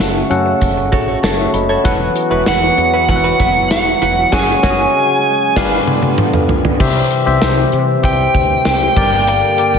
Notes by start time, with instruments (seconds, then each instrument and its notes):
Already playing: analog synth pad C#3 F#3 A3 F#4, tine electric piano C#4 F#4 A4 F#5
0.00 fretless electric bass F#1, muted clean electric guitar stroke, snare, closed hi-hat, tambourine
0.15 muted clean electric guitar stroke
0.30 fretless electric bass F#2, tine electric piano C#4 F#4 A4 F#5, closed hi-hat
0.46 muted clean electric guitar stroke
0.61 fretless electric bass F#1, muted clean electric guitar stroke, kick, closed hi-hat
0.77 muted clean electric guitar stroke
0.92 fretless electric bass A1, clean electric guitar F#4 A4 C#5, kick, closed hi-hat
1.08 clean electric guitar F#4 A4 C#5
1.23 fretless electric bass F#1, clean electric guitar F#4 A4 C#5, tine electric piano C#5 A5, snare, closed hi-hat, tambourine
1.39 tine electric piano E5 C#6, muted clean electric guitar stroke
1.54 fretless electric bass F#1, tine electric piano D#5 B5, muted clean electric guitar stroke, closed hi-hat
1.69 clean electric guitar F#4 A4 C#5, tine electric piano C#5 A5
1.84 fretless electric bass E1, tine electric piano E3 E4 F#4 B4 F#5, analog synth pad E3 F#3 B3, clean electric guitar E4 F#4 B4, kick, closed hi-hat
2.15 muted clean electric guitar stroke, closed hi-hat
2.30 fretless electric bass E1, tine electric piano E4 F#4 B4 F#5, clean electric guitar E4 F#4 B4
2.46 fretless electric bass E1, clean electric guitar E4 F#4 B4, lead electric guitar F#5, snare, closed hi-hat, tambourine
2.62 muted clean electric guitar stroke
2.77 fretless electric bass E2, muted clean electric guitar stroke, closed hi-hat
2.94 clean electric guitar E4 F#4 B4
3.08 fretless electric bass E1, tine electric piano E4 F#4 B4 E5, lead electric guitar F#5, muted clean electric guitar stroke, kick, closed hi-hat
3.16 tine electric piano F#5
3.24 clean electric guitar E4 F#4 B4
3.39 fretless electric bass F#1, clean electric guitar E4 F#4 B4, kick, closed hi-hat
3.55 muted clean electric guitar stroke
3.71 fretless electric bass E1, lead electric guitar F#5, snare, closed hi-hat, tambourine
3.86 muted clean electric guitar stroke
4.02 fretless electric bass E1, clean electric guitar E4 F#4 B4, closed hi-hat
4.17 muted clean electric guitar stroke
4.32 fretless electric bass F#1, analog synth pad C#3 G#3, tine electric piano C#4 F#4 G#4 F#5, clean electric guitar F#4 G#4 C#5, lead electric guitar G#5, kick, snare, crash
4.63 fretless electric bass F#1, tine electric piano C#4 F#4, clean electric guitar F#4 G#4 C#5, kick, snare
4.70 tine electric piano G#4
5.56 fretless electric bass G1, tine electric piano G2 D4 G4 B4 F5, analog synth pad D3 G3 B3 F4, clean electric guitar D4 F4 B4, kick, snare, crash
5.87 high tom
6.03 high tom
6.18 mid tom
6.34 mid tom
6.49 floor tom
6.65 floor tom
6.80 fretless electric bass C2, tine electric piano C3 G4 C5 E5, analog synth pad E3 G3 C4 G4, kick, crash
7.11 closed hi-hat
7.26 fretless electric bass C2, tine electric piano G4 C5 E5
7.42 fretless electric bass C2, snare, closed hi-hat, tambourine
7.72 fretless electric bass C3, closed hi-hat
8.03 fretless electric bass C2, tine electric piano G4 C5 E5, lead electric guitar G5, kick, closed hi-hat
8.35 fretless electric bass D2, kick, closed hi-hat
8.65 fretless electric bass C2, snare, closed hi-hat, tambourine
8.96 fretless electric bass G1, tine electric piano G2 G4 A#4 D5, analog synth pad D3 A#3, kick, crash
9.27 lead electric guitar G5, closed hi-hat
9.58 tine electric piano G4 A#4 D5, closed hi-hat
9.74 fretless electric bass G1